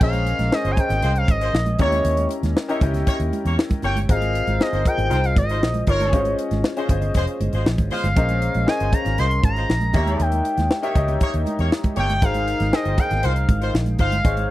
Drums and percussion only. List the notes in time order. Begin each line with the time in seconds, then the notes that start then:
0.01 kick, crash, muted conga
0.13 closed hi-hat, high conga
0.25 closed hi-hat, muted conga
0.39 snare, closed hi-hat, high conga
0.52 snare
0.65 closed hi-hat
0.76 kick, closed hi-hat, muted conga
0.89 snare, closed hi-hat, low conga
1.02 closed hi-hat, muted conga
1.16 closed hi-hat
1.28 kick, closed hi-hat, high conga
1.41 closed hi-hat
1.54 snare, muted conga
1.66 closed hi-hat, high conga
1.79 kick, closed hi-hat, low conga
1.92 closed hi-hat, high conga
2.05 closed hi-hat, muted conga
2.17 closed hi-hat, high conga
2.29 closed hi-hat, muted conga
2.43 snare, closed hi-hat, high conga
2.56 snare, muted conga
2.69 closed hi-hat
2.81 kick, closed hi-hat, muted conga
2.94 snare, closed hi-hat, low conga
3.07 kick, closed hi-hat
3.20 closed hi-hat
3.32 closed hi-hat, high conga
3.46 closed hi-hat
3.59 snare
3.70 kick, closed hi-hat, high conga
3.82 snare, closed hi-hat, muted conga, low conga
3.96 closed hi-hat, high conga
4.09 kick, closed hi-hat
4.21 closed hi-hat, high conga
4.33 closed hi-hat, muted conga
4.47 closed hi-hat, high conga
4.60 snare, muted conga
4.73 closed hi-hat
4.85 kick, closed hi-hat
4.98 closed hi-hat, low conga
5.10 closed hi-hat, muted conga
5.24 closed hi-hat
5.36 kick, closed hi-hat, high conga
5.49 closed hi-hat
5.63 snare
5.74 closed hi-hat, high conga
5.87 kick, closed hi-hat, muted conga, low conga
6.00 closed hi-hat, high conga
6.13 kick, closed hi-hat
6.25 closed hi-hat, high conga
6.39 closed hi-hat
6.51 snare, closed hi-hat, high conga
6.64 snare, muted conga
6.77 closed hi-hat
6.89 kick, closed hi-hat, muted conga, low conga
7.02 closed hi-hat, low conga
7.14 kick, closed hi-hat
7.27 closed hi-hat
7.41 closed hi-hat, high conga
7.53 closed hi-hat
7.66 snare, muted conga
7.78 kick, closed hi-hat, high conga
7.91 snare, open hi-hat, low conga
8.04 closed hi-hat, high conga
8.16 kick, closed hi-hat
8.29 closed hi-hat, high conga
8.42 closed hi-hat
8.54 closed hi-hat, high conga
8.68 snare, muted conga
8.80 closed hi-hat
8.92 kick, closed hi-hat, muted conga
9.05 snare, closed hi-hat, low conga
9.18 closed hi-hat, muted conga
9.31 closed hi-hat
9.43 kick, closed hi-hat, high conga
9.56 closed hi-hat
9.69 snare, muted conga
9.81 closed hi-hat, high conga
9.93 kick, snare, closed hi-hat, muted conga, low conga
10.06 closed hi-hat, high conga
10.20 closed hi-hat, muted conga
10.32 closed hi-hat, high conga
10.45 closed hi-hat
10.57 snare, closed hi-hat, high conga
10.71 snare
10.83 closed hi-hat
10.95 kick, closed hi-hat
11.08 closed hi-hat, low conga
11.20 kick, closed hi-hat, muted conga
11.34 closed hi-hat
11.46 closed hi-hat, high conga
11.59 closed hi-hat
11.72 snare
11.84 kick, closed hi-hat, high conga
11.96 snare, closed hi-hat, muted conga, low conga
12.09 closed hi-hat, high conga
12.22 kick, closed hi-hat, muted conga
12.34 closed hi-hat, high conga
12.48 closed hi-hat
12.60 snare, closed hi-hat, high conga
12.73 snare, muted conga
12.85 closed hi-hat
12.98 kick, closed hi-hat, muted conga
13.11 snare, closed hi-hat, low conga
13.23 closed hi-hat, muted conga
13.36 closed hi-hat
13.49 kick, closed hi-hat, muted conga, high conga
13.62 closed hi-hat
13.75 snare
13.86 closed hi-hat, high conga
13.99 kick, closed hi-hat, muted conga, low conga
14.12 closed hi-hat, high conga
14.25 kick, closed hi-hat
14.37 closed hi-hat, high conga